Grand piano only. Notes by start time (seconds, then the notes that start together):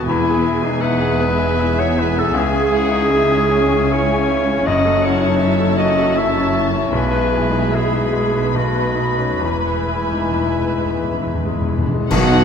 0.09 E2
0.30 G#4
0.46 E4
0.65 D#4
0.83 E4
1.01 G#4
1.20 B3
1.39 G#4
1.60 E4
1.79 B3
1.96 E4
2.17 B3
2.34 C#2
2.53 G#4
2.72 E4
2.91 D#4
3.09 E4
3.31 G#4
3.52 C#4
3.72 G#4
3.91 E4
4.12 C#4
4.30 E4
4.50 C#4
4.67 F#2
4.84 A4
5.03 E4
5.21 D#4
5.41 E4
5.59 A4
5.79 C#4
5.99 A4
6.16 E4
6.37 C#4
6.54 E4
6.73 C#4
6.92 B1
7.12 B4
7.33 E4
7.51 D#4
7.72 E4
7.93 B4
8.12 G#3
8.34 B4
8.54 B1
8.74 B4
8.95 D#4
9.18 C#4
9.40 E2
9.65 B4
9.89 E4
10.12 D#4
10.33 E4
10.56 B4
10.79 G#3
10.99 B4
11.22 E4
11.45 G#3
11.68 E4
11.93 G#3
12.11 B1 B2